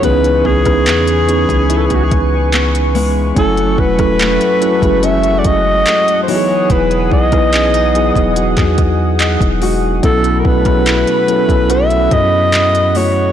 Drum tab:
HH |xx-xxxxxxxx-xxo-|xx-xxxxxxxx-xxo-|xx-xxxxxxxx-xxo-|xx-xxxxxxxx-xxo-|
CP |----x-------x---|----x-------x---|----x----x--x---|----x-------x---|
SD |---r------------|---r------------|---r------------|---r------------|
BD |o-oo---o-oo-----|o-oo---o--o-----|o-oo---o-oo--o--|o-oo---o--o-----|